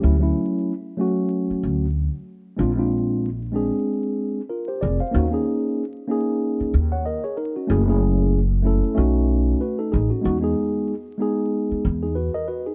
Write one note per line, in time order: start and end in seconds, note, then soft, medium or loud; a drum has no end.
0.00 0.31 D2 medium
0.00 0.14 F#3 medium
0.00 0.15 A3 medium
0.00 0.15 C#4 medium
0.00 0.20 G4 medium
0.04 0.16 E4 medium
0.19 0.71 F#3 medium
0.19 0.72 A3 medium
0.19 0.73 C#4 medium
0.19 0.73 E4 medium
0.97 1.84 F#3 medium
0.97 1.85 A3 medium
0.97 1.85 C#4 medium
0.97 1.86 F#4 medium
1.50 muted upright bass stroke soft
1.63 2.07 D2 medium
2.57 3.69 A#1 medium
2.57 2.70 G#3 medium
2.57 2.70 C4 medium
2.57 2.71 D4 medium
2.57 2.72 F4 medium
2.76 3.27 G#3 medium
2.76 3.28 C4 medium
2.76 3.29 D4 medium
2.76 3.29 F4 medium
3.52 4.39 G#3 medium
3.52 4.40 C4 medium
3.52 4.41 D4 medium
3.52 4.41 G#4 medium
4.50 4.68 F4 medium
4.50 4.67 A#4 medium
4.68 4.81 G4 medium
4.68 4.81 C5 medium
4.81 4.98 F1 medium
4.81 5.00 G#4 medium
4.81 4.99 D5 medium
5.00 5.31 C5 soft
5.00 5.31 F5 medium
5.11 5.42 D#2 medium
5.11 5.25 A#3 medium
5.11 5.25 C#4 medium
5.11 5.26 D#4 medium
5.15 5.27 F#4 medium
5.30 5.82 A#3 medium
5.30 5.83 C#4 medium
5.30 5.83 D#4 medium
5.30 5.84 G#4 medium
6.07 6.95 A#3 medium
6.07 6.73 C#4 medium
6.07 6.74 D#4 medium
6.07 6.74 G#4 medium
6.60 muted upright bass stroke soft
6.74 7.17 D#2 medium
6.92 7.05 C#5 medium
6.92 7.05 F#5 medium
7.06 7.24 A#4 medium
7.06 7.23 D#5 medium
7.24 7.37 G#4 medium
7.24 7.37 C#5 medium
7.37 7.55 D#4 medium
7.37 7.55 A#4 medium
7.56 7.67 C#4 soft
7.56 7.86 F#4 medium
7.67 8.80 F#1 medium
7.67 7.80 A3 medium
7.67 7.81 C#4 medium
7.67 7.82 E4 medium
7.67 7.82 G#4 medium
7.86 8.38 A3 medium
7.86 8.38 C#4 medium
7.86 8.39 E4 medium
7.86 8.40 G#4 medium
8.63 8.93 A3 medium
8.63 8.94 C#4 medium
8.63 8.97 E4 medium
8.67 8.98 A4 medium
8.95 9.53 B1 medium
8.95 9.99 A3 medium
8.95 9.60 C#4 medium
8.95 9.61 D#4 medium
8.95 9.60 F#4 medium
9.61 9.79 F#4 soft
9.61 9.78 B4 medium
9.79 9.91 D#4 medium
9.79 9.92 A4 medium
9.92 10.09 A1 medium
9.92 10.10 D#4 medium
9.92 10.10 G#4 medium
10.10 10.41 C#4 soft
10.10 10.24 F#4 medium
10.21 10.53 E2 medium
10.21 10.35 G#3 medium
10.21 10.36 B3 medium
10.21 10.37 D#4 medium
10.26 10.37 F#4 medium
10.40 10.92 G#3 medium
10.40 10.93 B3 medium
10.40 10.94 D#4 medium
10.40 10.94 G#4 medium
11.18 12.05 G#3 medium
11.18 12.06 B3 medium
11.18 11.84 D#4 medium
11.18 11.85 G#4 medium
11.71 muted upright bass stroke soft
11.85 12.28 E2 medium
12.03 12.16 D#4 soft
12.03 12.15 G#4 medium
12.15 12.34 F#4 medium
12.15 12.33 B4 medium
12.34 12.47 A#4 medium
12.34 12.47 D#5 medium
12.48 12.66 F#4 soft
12.48 12.65 B4 medium
12.66 12.75 D#4 soft
12.66 12.75 G#4 medium